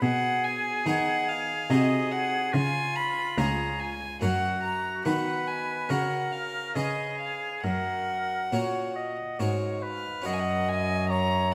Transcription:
0.02 harpsichord B2, cello B2, oboe G#4, violin F#5
0.44 violin G#5
0.86 harpsichord D#3 B3 D#4 G#4, cello D#3, violin F#5
1.28 violin F5
1.70 cello C3, harpsichord C3 D#4 F#4 G#4, oboe G#4, violin D#5
2.11 violin F#5
2.53 harpsichord C#3, cello C#3, oboe F4, violin G#5
2.96 violin B5
3.38 harpsichord C#2 C#4 F4 G#4, cello C#2, oboe G#4, violin A#5
3.80 violin G#5
4.21 harpsichord F#2 C#4 F#4 A#4, cello F#2, oboe F#4, violin F#5
4.63 violin A#5
5.05 harpsichord D#3 B3 F#4 B4, cello D#3, oboe B4, violin F#5
5.47 violin G#5
5.89 harpsichord C#3 C#4 F#4 A#4, cello C#3, oboe A#4, violin F#5
6.32 violin F5
6.75 harpsichord C#3 C#4 G#4 B4, cello C#3, oboe G#4, violin D#5
7.20 violin F5
7.64 harpsichord F#2, cello F#2, oboe A#4, violin F#5
8.52 cello A#2, harpsichord A#2 C#4 F#4 A#4, oboe C#5
8.96 oboe D#5
9.39 harpsichord G#2 C#4 F#4 A#4, cello G#2, oboe C#5
9.83 oboe B4, violin F5
10.22 harpsichord C#4 F#4 A#4
10.26 harpsichord F#2, cello F#2, oboe D#5, violin F#5
10.33 violin G#5
10.39 violin F#5
10.68 violin G#5
11.10 oboe C#5, violin A#5

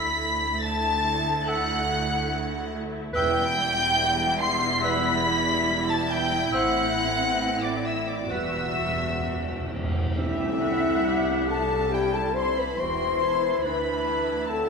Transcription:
Already playing: double bass section D2, cello section D2, french horn section A3 E4, viola section A3 E4, violin section B5 B6, flute B5
0.61 flute A5, violin section A5 A6
1.46 clarinet A4, oboe E5, violin section F#5 F#6, flute F#5
3.13 double bass section E1, cello section E2, viola section G3, french horn section B3 E4, clarinet B4, oboe E5, flute G5, violin section G6
3.17 timpani E2, viola section E4, violin section G5
4.40 flute C6, violin section C6 C7
4.82 clarinet B4, oboe E5, flute B5, violin section B5 B6
5.90 flute A5, violin section A5 A6
6.11 violin section G5 G6, flute G5
6.52 double bass section A1, cello section A2, french horn section C4, viola section C4, clarinet C5, oboe E5, flute F#5, violin section F#6
6.56 violin section F#5
7.62 flute D5, violin section D5 D6
7.85 flute E5, violin section E5 E6
8.08 violin section D5 D6, flute D5
8.29 double bass section E1, cello section E2, timpani E2, viola section G3 F#4, french horn section B3 F#4, clarinet B4, violin section E5 E6, flute E5, oboe F#5
8.40 timpani E2
8.49 timpani E2
8.56 timpani E2
8.64 timpani E2
8.73 timpani E2
8.80 timpani E2
8.88 timpani E2
8.96 timpani E2
9.04 timpani E2
9.13 timpani E2
9.20 timpani E2
9.28 timpani E2
9.36 timpani E2
9.44 timpani E2
9.52 timpani E2
9.61 timpani E2
9.67 timpani E2
9.76 timpani E2
9.84 timpani E2
9.91 timpani E2
9.99 timpani E2
10.07 timpani E2
10.15 double bass section C2, cello section C2, viola section A3 G4, clarinet C4, french horn section E4, flute E5, violin section E5, tam-tam
10.60 viola section F#5
11.04 viola section G3, clarinet G4
11.48 viola section G3, french horn section A4, violin section A5, flute A5
11.90 viola section E4, clarinet E4, french horn section G4, flute G5, violin section A5
11.94 violin section G5
12.14 french horn section A4, flute A5, violin section A5
12.34 french horn section C5, flute C6
12.38 violin section C6
12.58 french horn section B4, flute B5, violin section B5
12.77 double bass section E1, cello section E2, viola section E3, clarinet F#4, french horn section C5, violin section G5 C6, flute C6
13.22 clarinet E4, violin section A5
13.63 cello section D2, double bass section D2, clarinet D4, french horn section B4, violin section B5, flute B5
14.04 violin section A5
14.46 viola section F#3, clarinet C4, french horn section A4, violin section A5, flute A5

